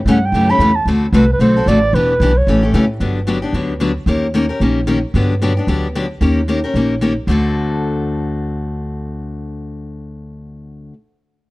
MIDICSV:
0, 0, Header, 1, 4, 480
1, 0, Start_track
1, 0, Tempo, 267618
1, 1553, Time_signature, 4, 2, 24, 8
1, 20632, End_track
2, 0, Start_track
2, 0, Title_t, "Clarinet"
2, 0, Program_c, 0, 71
2, 174, Note_on_c, 0, 78, 77
2, 458, Note_on_c, 0, 79, 91
2, 484, Note_off_c, 0, 78, 0
2, 902, Note_on_c, 0, 83, 110
2, 929, Note_off_c, 0, 79, 0
2, 1351, Note_on_c, 0, 81, 78
2, 1378, Note_off_c, 0, 83, 0
2, 1556, Note_off_c, 0, 81, 0
2, 2062, Note_on_c, 0, 71, 85
2, 2301, Note_off_c, 0, 71, 0
2, 2385, Note_on_c, 0, 71, 85
2, 2518, Note_on_c, 0, 72, 89
2, 2545, Note_off_c, 0, 71, 0
2, 3015, Note_on_c, 0, 74, 98
2, 3042, Note_off_c, 0, 72, 0
2, 3490, Note_on_c, 0, 71, 91
2, 3517, Note_off_c, 0, 74, 0
2, 4256, Note_on_c, 0, 73, 90
2, 4283, Note_off_c, 0, 71, 0
2, 4926, Note_off_c, 0, 73, 0
2, 20632, End_track
3, 0, Start_track
3, 0, Title_t, "Steel-string acoustic guitar"
3, 0, Program_c, 1, 25
3, 132, Note_on_c, 1, 49, 79
3, 138, Note_on_c, 1, 52, 76
3, 143, Note_on_c, 1, 57, 85
3, 152, Note_on_c, 1, 61, 95
3, 152, Note_on_c, 1, 67, 90
3, 306, Note_off_c, 1, 49, 0
3, 309, Note_off_c, 1, 52, 0
3, 312, Note_off_c, 1, 57, 0
3, 316, Note_off_c, 1, 61, 0
3, 316, Note_off_c, 1, 67, 0
3, 609, Note_on_c, 1, 49, 61
3, 623, Note_on_c, 1, 52, 64
3, 627, Note_on_c, 1, 57, 68
3, 632, Note_on_c, 1, 61, 71
3, 636, Note_on_c, 1, 67, 73
3, 862, Note_off_c, 1, 49, 0
3, 863, Note_off_c, 1, 67, 0
3, 869, Note_off_c, 1, 52, 0
3, 871, Note_off_c, 1, 57, 0
3, 874, Note_off_c, 1, 61, 0
3, 884, Note_on_c, 1, 67, 59
3, 899, Note_on_c, 1, 61, 54
3, 924, Note_on_c, 1, 57, 46
3, 1072, Note_off_c, 1, 57, 0
3, 1075, Note_off_c, 1, 67, 0
3, 1080, Note_on_c, 1, 49, 88
3, 1082, Note_off_c, 1, 61, 0
3, 1087, Note_on_c, 1, 52, 84
3, 1094, Note_on_c, 1, 57, 80
3, 1101, Note_on_c, 1, 67, 90
3, 1102, Note_on_c, 1, 61, 89
3, 1259, Note_off_c, 1, 49, 0
3, 1263, Note_off_c, 1, 52, 0
3, 1266, Note_off_c, 1, 57, 0
3, 1270, Note_off_c, 1, 61, 0
3, 1270, Note_off_c, 1, 67, 0
3, 1570, Note_on_c, 1, 50, 71
3, 1576, Note_on_c, 1, 57, 65
3, 1582, Note_on_c, 1, 66, 69
3, 1584, Note_on_c, 1, 60, 66
3, 1588, Note_on_c, 1, 69, 75
3, 1889, Note_off_c, 1, 50, 0
3, 1892, Note_off_c, 1, 57, 0
3, 1895, Note_off_c, 1, 66, 0
3, 1896, Note_off_c, 1, 60, 0
3, 1898, Note_off_c, 1, 69, 0
3, 2035, Note_on_c, 1, 50, 85
3, 2048, Note_on_c, 1, 57, 92
3, 2049, Note_on_c, 1, 60, 94
3, 2054, Note_on_c, 1, 69, 100
3, 2057, Note_on_c, 1, 66, 92
3, 2216, Note_off_c, 1, 50, 0
3, 2222, Note_off_c, 1, 57, 0
3, 2223, Note_off_c, 1, 60, 0
3, 2226, Note_off_c, 1, 69, 0
3, 2227, Note_off_c, 1, 66, 0
3, 2511, Note_on_c, 1, 50, 66
3, 2524, Note_on_c, 1, 57, 70
3, 2526, Note_on_c, 1, 60, 74
3, 2527, Note_on_c, 1, 66, 66
3, 2541, Note_on_c, 1, 69, 74
3, 2772, Note_off_c, 1, 50, 0
3, 2779, Note_off_c, 1, 57, 0
3, 2780, Note_off_c, 1, 60, 0
3, 2780, Note_off_c, 1, 66, 0
3, 2787, Note_off_c, 1, 69, 0
3, 2806, Note_on_c, 1, 69, 58
3, 2821, Note_on_c, 1, 66, 53
3, 2832, Note_on_c, 1, 60, 48
3, 2994, Note_off_c, 1, 69, 0
3, 3001, Note_off_c, 1, 66, 0
3, 3004, Note_on_c, 1, 50, 77
3, 3007, Note_off_c, 1, 60, 0
3, 3014, Note_on_c, 1, 57, 87
3, 3026, Note_on_c, 1, 66, 80
3, 3027, Note_on_c, 1, 60, 81
3, 3035, Note_on_c, 1, 69, 93
3, 3180, Note_off_c, 1, 50, 0
3, 3185, Note_off_c, 1, 57, 0
3, 3191, Note_off_c, 1, 60, 0
3, 3191, Note_off_c, 1, 66, 0
3, 3195, Note_off_c, 1, 69, 0
3, 3501, Note_on_c, 1, 52, 64
3, 3503, Note_on_c, 1, 59, 70
3, 3512, Note_on_c, 1, 62, 70
3, 3517, Note_on_c, 1, 67, 73
3, 3813, Note_off_c, 1, 52, 0
3, 3814, Note_off_c, 1, 59, 0
3, 3819, Note_off_c, 1, 62, 0
3, 3821, Note_off_c, 1, 67, 0
3, 3972, Note_on_c, 1, 52, 81
3, 3973, Note_on_c, 1, 59, 85
3, 3989, Note_on_c, 1, 62, 84
3, 3993, Note_on_c, 1, 67, 85
3, 4144, Note_off_c, 1, 52, 0
3, 4144, Note_off_c, 1, 59, 0
3, 4152, Note_off_c, 1, 62, 0
3, 4154, Note_off_c, 1, 67, 0
3, 4451, Note_on_c, 1, 49, 67
3, 4452, Note_on_c, 1, 52, 69
3, 4461, Note_on_c, 1, 61, 70
3, 4464, Note_on_c, 1, 57, 71
3, 4469, Note_on_c, 1, 67, 73
3, 4693, Note_off_c, 1, 67, 0
3, 4701, Note_off_c, 1, 49, 0
3, 4701, Note_off_c, 1, 52, 0
3, 4706, Note_off_c, 1, 61, 0
3, 4707, Note_off_c, 1, 57, 0
3, 4715, Note_on_c, 1, 67, 58
3, 4736, Note_on_c, 1, 61, 47
3, 4749, Note_on_c, 1, 57, 49
3, 4903, Note_off_c, 1, 57, 0
3, 4907, Note_off_c, 1, 67, 0
3, 4912, Note_off_c, 1, 61, 0
3, 4912, Note_on_c, 1, 49, 81
3, 4919, Note_on_c, 1, 52, 78
3, 4925, Note_on_c, 1, 57, 86
3, 4932, Note_on_c, 1, 67, 82
3, 4934, Note_on_c, 1, 61, 87
3, 5093, Note_off_c, 1, 49, 0
3, 5097, Note_off_c, 1, 52, 0
3, 5099, Note_off_c, 1, 57, 0
3, 5103, Note_off_c, 1, 67, 0
3, 5104, Note_off_c, 1, 61, 0
3, 5389, Note_on_c, 1, 50, 69
3, 5396, Note_on_c, 1, 59, 63
3, 5398, Note_on_c, 1, 54, 71
3, 5404, Note_on_c, 1, 62, 68
3, 5411, Note_on_c, 1, 67, 68
3, 5717, Note_off_c, 1, 50, 0
3, 5720, Note_off_c, 1, 59, 0
3, 5721, Note_off_c, 1, 54, 0
3, 5724, Note_off_c, 1, 62, 0
3, 5727, Note_off_c, 1, 67, 0
3, 5862, Note_on_c, 1, 50, 77
3, 5872, Note_on_c, 1, 54, 74
3, 5883, Note_on_c, 1, 59, 90
3, 5884, Note_on_c, 1, 62, 81
3, 5892, Note_on_c, 1, 67, 88
3, 6047, Note_off_c, 1, 50, 0
3, 6053, Note_off_c, 1, 54, 0
3, 6058, Note_off_c, 1, 59, 0
3, 6058, Note_off_c, 1, 62, 0
3, 6062, Note_off_c, 1, 67, 0
3, 6135, Note_on_c, 1, 67, 56
3, 6155, Note_on_c, 1, 62, 51
3, 6173, Note_on_c, 1, 59, 44
3, 6334, Note_off_c, 1, 59, 0
3, 6337, Note_off_c, 1, 62, 0
3, 6337, Note_off_c, 1, 67, 0
3, 6352, Note_on_c, 1, 50, 59
3, 6355, Note_on_c, 1, 59, 61
3, 6358, Note_on_c, 1, 62, 63
3, 6361, Note_on_c, 1, 54, 65
3, 6372, Note_on_c, 1, 67, 70
3, 6678, Note_off_c, 1, 50, 0
3, 6679, Note_off_c, 1, 59, 0
3, 6681, Note_off_c, 1, 62, 0
3, 6682, Note_off_c, 1, 54, 0
3, 6687, Note_off_c, 1, 67, 0
3, 6816, Note_on_c, 1, 50, 75
3, 6825, Note_on_c, 1, 54, 78
3, 6833, Note_on_c, 1, 59, 84
3, 6835, Note_on_c, 1, 62, 87
3, 6841, Note_on_c, 1, 67, 81
3, 7004, Note_off_c, 1, 50, 0
3, 7009, Note_off_c, 1, 54, 0
3, 7013, Note_off_c, 1, 59, 0
3, 7013, Note_off_c, 1, 62, 0
3, 7017, Note_off_c, 1, 67, 0
3, 7301, Note_on_c, 1, 51, 60
3, 7312, Note_on_c, 1, 58, 64
3, 7323, Note_on_c, 1, 61, 72
3, 7325, Note_on_c, 1, 67, 71
3, 7327, Note_on_c, 1, 70, 73
3, 7632, Note_off_c, 1, 51, 0
3, 7637, Note_off_c, 1, 58, 0
3, 7643, Note_off_c, 1, 61, 0
3, 7644, Note_off_c, 1, 67, 0
3, 7645, Note_off_c, 1, 70, 0
3, 7782, Note_on_c, 1, 51, 82
3, 7796, Note_on_c, 1, 58, 87
3, 7802, Note_on_c, 1, 67, 85
3, 7804, Note_on_c, 1, 61, 81
3, 7809, Note_on_c, 1, 70, 86
3, 7967, Note_off_c, 1, 51, 0
3, 7974, Note_off_c, 1, 58, 0
3, 7977, Note_off_c, 1, 67, 0
3, 7978, Note_off_c, 1, 61, 0
3, 7981, Note_off_c, 1, 70, 0
3, 8055, Note_on_c, 1, 70, 53
3, 8072, Note_on_c, 1, 67, 51
3, 8084, Note_on_c, 1, 61, 43
3, 8256, Note_off_c, 1, 70, 0
3, 8260, Note_off_c, 1, 61, 0
3, 8265, Note_off_c, 1, 67, 0
3, 8272, Note_on_c, 1, 58, 63
3, 8274, Note_on_c, 1, 51, 69
3, 8282, Note_on_c, 1, 61, 65
3, 8288, Note_on_c, 1, 67, 69
3, 8294, Note_on_c, 1, 70, 66
3, 8597, Note_off_c, 1, 58, 0
3, 8598, Note_off_c, 1, 51, 0
3, 8602, Note_off_c, 1, 61, 0
3, 8605, Note_off_c, 1, 67, 0
3, 8608, Note_off_c, 1, 70, 0
3, 8734, Note_on_c, 1, 51, 86
3, 8740, Note_on_c, 1, 58, 81
3, 8747, Note_on_c, 1, 61, 80
3, 8751, Note_on_c, 1, 67, 80
3, 8753, Note_on_c, 1, 70, 88
3, 8923, Note_off_c, 1, 51, 0
3, 8926, Note_off_c, 1, 58, 0
3, 8929, Note_off_c, 1, 61, 0
3, 8931, Note_off_c, 1, 67, 0
3, 8932, Note_off_c, 1, 70, 0
3, 9237, Note_on_c, 1, 50, 65
3, 9243, Note_on_c, 1, 54, 65
3, 9249, Note_on_c, 1, 59, 70
3, 9255, Note_on_c, 1, 62, 69
3, 9257, Note_on_c, 1, 67, 71
3, 9559, Note_off_c, 1, 50, 0
3, 9562, Note_off_c, 1, 54, 0
3, 9565, Note_off_c, 1, 59, 0
3, 9568, Note_off_c, 1, 62, 0
3, 9570, Note_off_c, 1, 67, 0
3, 9713, Note_on_c, 1, 50, 72
3, 9723, Note_on_c, 1, 54, 83
3, 9723, Note_on_c, 1, 59, 84
3, 9735, Note_on_c, 1, 62, 83
3, 9738, Note_on_c, 1, 67, 85
3, 9892, Note_off_c, 1, 50, 0
3, 9897, Note_off_c, 1, 54, 0
3, 9897, Note_off_c, 1, 59, 0
3, 9903, Note_off_c, 1, 62, 0
3, 9905, Note_off_c, 1, 67, 0
3, 9989, Note_on_c, 1, 67, 51
3, 10015, Note_on_c, 1, 62, 48
3, 10029, Note_on_c, 1, 59, 39
3, 10174, Note_off_c, 1, 59, 0
3, 10177, Note_off_c, 1, 62, 0
3, 10183, Note_off_c, 1, 67, 0
3, 10190, Note_on_c, 1, 50, 66
3, 10191, Note_on_c, 1, 54, 59
3, 10196, Note_on_c, 1, 59, 67
3, 10199, Note_on_c, 1, 62, 71
3, 10205, Note_on_c, 1, 67, 73
3, 10516, Note_off_c, 1, 50, 0
3, 10516, Note_off_c, 1, 54, 0
3, 10519, Note_off_c, 1, 59, 0
3, 10520, Note_off_c, 1, 62, 0
3, 10523, Note_off_c, 1, 67, 0
3, 10679, Note_on_c, 1, 50, 72
3, 10679, Note_on_c, 1, 59, 81
3, 10683, Note_on_c, 1, 54, 84
3, 10686, Note_on_c, 1, 62, 74
3, 10690, Note_on_c, 1, 67, 82
3, 10855, Note_off_c, 1, 50, 0
3, 10855, Note_off_c, 1, 59, 0
3, 10857, Note_off_c, 1, 54, 0
3, 10858, Note_off_c, 1, 62, 0
3, 10861, Note_off_c, 1, 67, 0
3, 11133, Note_on_c, 1, 51, 65
3, 11142, Note_on_c, 1, 58, 63
3, 11154, Note_on_c, 1, 61, 68
3, 11156, Note_on_c, 1, 67, 75
3, 11162, Note_on_c, 1, 70, 68
3, 11468, Note_off_c, 1, 51, 0
3, 11472, Note_off_c, 1, 58, 0
3, 11478, Note_off_c, 1, 61, 0
3, 11479, Note_off_c, 1, 67, 0
3, 11482, Note_off_c, 1, 70, 0
3, 11622, Note_on_c, 1, 51, 67
3, 11633, Note_on_c, 1, 58, 77
3, 11635, Note_on_c, 1, 61, 79
3, 11643, Note_on_c, 1, 67, 86
3, 11643, Note_on_c, 1, 70, 81
3, 11807, Note_off_c, 1, 51, 0
3, 11812, Note_off_c, 1, 58, 0
3, 11813, Note_off_c, 1, 61, 0
3, 11817, Note_off_c, 1, 67, 0
3, 11818, Note_off_c, 1, 70, 0
3, 11905, Note_on_c, 1, 70, 55
3, 11918, Note_on_c, 1, 67, 43
3, 11933, Note_on_c, 1, 61, 48
3, 12101, Note_off_c, 1, 70, 0
3, 12108, Note_off_c, 1, 67, 0
3, 12115, Note_off_c, 1, 61, 0
3, 12116, Note_on_c, 1, 51, 61
3, 12120, Note_on_c, 1, 58, 57
3, 12130, Note_on_c, 1, 67, 62
3, 12133, Note_on_c, 1, 61, 63
3, 12136, Note_on_c, 1, 70, 71
3, 12439, Note_off_c, 1, 51, 0
3, 12441, Note_off_c, 1, 58, 0
3, 12446, Note_off_c, 1, 67, 0
3, 12448, Note_off_c, 1, 61, 0
3, 12449, Note_off_c, 1, 70, 0
3, 12577, Note_on_c, 1, 51, 77
3, 12590, Note_on_c, 1, 58, 79
3, 12592, Note_on_c, 1, 61, 72
3, 12599, Note_on_c, 1, 67, 76
3, 12606, Note_on_c, 1, 70, 80
3, 12765, Note_off_c, 1, 51, 0
3, 12771, Note_off_c, 1, 58, 0
3, 12772, Note_off_c, 1, 61, 0
3, 12775, Note_off_c, 1, 67, 0
3, 12779, Note_off_c, 1, 70, 0
3, 13055, Note_on_c, 1, 50, 82
3, 13077, Note_on_c, 1, 57, 80
3, 13081, Note_on_c, 1, 60, 77
3, 13095, Note_on_c, 1, 66, 80
3, 13115, Note_on_c, 1, 69, 86
3, 19597, Note_off_c, 1, 50, 0
3, 19608, Note_off_c, 1, 57, 0
3, 19610, Note_off_c, 1, 60, 0
3, 19617, Note_off_c, 1, 66, 0
3, 19627, Note_off_c, 1, 69, 0
3, 20632, End_track
4, 0, Start_track
4, 0, Title_t, "Upright bass"
4, 0, Program_c, 2, 32
4, 102, Note_on_c, 2, 43, 91
4, 566, Note_off_c, 2, 43, 0
4, 577, Note_on_c, 2, 42, 85
4, 1037, Note_off_c, 2, 42, 0
4, 1048, Note_on_c, 2, 40, 88
4, 1525, Note_off_c, 2, 40, 0
4, 1533, Note_on_c, 2, 38, 82
4, 2008, Note_off_c, 2, 38, 0
4, 2017, Note_on_c, 2, 36, 96
4, 2490, Note_off_c, 2, 36, 0
4, 2498, Note_on_c, 2, 35, 80
4, 2970, Note_off_c, 2, 35, 0
4, 2980, Note_on_c, 2, 33, 92
4, 3450, Note_off_c, 2, 33, 0
4, 3461, Note_on_c, 2, 28, 86
4, 3930, Note_off_c, 2, 28, 0
4, 3943, Note_on_c, 2, 35, 90
4, 4411, Note_off_c, 2, 35, 0
4, 4426, Note_on_c, 2, 33, 86
4, 4893, Note_off_c, 2, 33, 0
4, 4908, Note_on_c, 2, 45, 88
4, 5374, Note_off_c, 2, 45, 0
4, 5383, Note_on_c, 2, 31, 80
4, 6152, Note_off_c, 2, 31, 0
4, 6324, Note_on_c, 2, 38, 76
4, 7101, Note_off_c, 2, 38, 0
4, 7282, Note_on_c, 2, 39, 83
4, 8060, Note_off_c, 2, 39, 0
4, 8252, Note_on_c, 2, 34, 73
4, 9026, Note_off_c, 2, 34, 0
4, 9216, Note_on_c, 2, 43, 89
4, 9988, Note_off_c, 2, 43, 0
4, 10172, Note_on_c, 2, 38, 76
4, 10946, Note_off_c, 2, 38, 0
4, 11133, Note_on_c, 2, 39, 80
4, 11906, Note_off_c, 2, 39, 0
4, 12087, Note_on_c, 2, 34, 76
4, 12863, Note_off_c, 2, 34, 0
4, 13041, Note_on_c, 2, 38, 80
4, 19518, Note_off_c, 2, 38, 0
4, 20632, End_track
0, 0, End_of_file